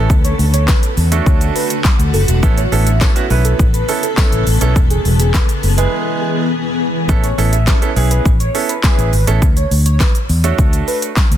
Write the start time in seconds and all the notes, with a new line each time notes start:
Already playing: A4
0.10 D2 D3 A3 F#4, kick, shaker
0.24 C#5, closed hi-hat, shaker
0.39 D2, open hi-hat, shaker
0.54 C#5, closed hi-hat, shaker
0.68 B4, kick, snare, clap, tambourine, shaker
0.83 closed hi-hat, shaker
0.97 E2, open hi-hat, shaker
1.12 A3 D4 F#4 A4 C#5, closed hi-hat, shaker
1.26 D2, kick, shaker
1.41 closed hi-hat, shaker
1.55 B4, open hi-hat, shaker
1.70 closed hi-hat, shaker
1.84 kick, snare, clap, tambourine, shaker
1.99 D2, closed hi-hat, shaker
2.14 F#1 A4, open hi-hat, shaker
2.28 E1, closed hi-hat, shaker
2.43 A1 C#3 B3 C#4 E4 A4, kick, shaker
2.58 C#5, closed hi-hat, shaker
2.72 A1 B3 C#4 E4 A4, open hi-hat, shaker
2.87 E5, closed hi-hat, shaker
3.01 B3 C#4 E4 A4 C#5, kick, snare, clap, tambourine, shaker
3.16 B3 C#4 E4 F#4, closed hi-hat, shaker
3.30 B1 B3 C#4 E4 B4, open hi-hat, shaker
3.45 A4, closed hi-hat, shaker
3.59 A1, kick, shaker
3.74 B4, closed hi-hat, shaker
3.88 B3 C#4 E4 A4, open hi-hat, shaker
4.03 A4, closed hi-hat, shaker
4.17 B3 C#4 E4 A4, kick, snare, clap, tambourine, shaker
4.32 A1, closed hi-hat, shaker
4.47 A1, open hi-hat, shaker
4.61 B1 B3 C#4 E4 A4, closed hi-hat, shaker
4.76 E1 E3 B3 G#4, kick, shaker
4.91 G#4, closed hi-hat, shaker
5.05 E1, open hi-hat, shaker
5.20 G#4, closed hi-hat, shaker
5.34 B4, kick, snare, clap, tambourine, shaker
5.49 closed hi-hat, shaker
5.63 F#1, open hi-hat, shaker
5.78 G#3 B3 E4 G#4 B4, closed hi-hat, shaker
6.21 G#4
7.09 A1 B3 C#4 E4 A4, kick, shaker
7.24 C#5, closed hi-hat, shaker
7.38 A1 B3 C#4 E4 A4, open hi-hat, shaker
7.52 E5, closed hi-hat, shaker
7.67 B3 C#4 E4 A4 B4, kick, snare, clap, tambourine, shaker
7.81 B3 C#4 E4 A4, closed hi-hat, shaker
7.96 B1 B3 C#4 E4 G#4, open hi-hat, shaker
8.11 B4, closed hi-hat, shaker
8.26 A1, kick, shaker
8.40 C#5, closed hi-hat, shaker
8.54 B3 C#4 E4 A4, open hi-hat, shaker
8.69 B4, closed hi-hat, shaker
8.83 B3 C#4 E4 G#4, kick, snare, clap, tambourine, shaker
8.98 A1, closed hi-hat, shaker
9.13 G#1, open hi-hat, shaker
9.27 A1 B3 C#4 E4 A4, closed hi-hat, shaker
9.42 kick, shaker
9.57 C#5, closed hi-hat, shaker
9.71 D2, open hi-hat, shaker
9.86 C#5, closed hi-hat, shaker
10.00 B4, kick, snare, clap, tambourine, shaker
10.15 closed hi-hat, shaker
10.29 E2, open hi-hat, shaker
10.44 A3 D4 F#4 A4 C#5, closed hi-hat, shaker
10.58 D2, kick, shaker
10.73 closed hi-hat, shaker
10.88 B4, open hi-hat, shaker
11.02 closed hi-hat, shaker
11.17 kick, snare, clap, tambourine, shaker
11.31 D2, closed hi-hat, shaker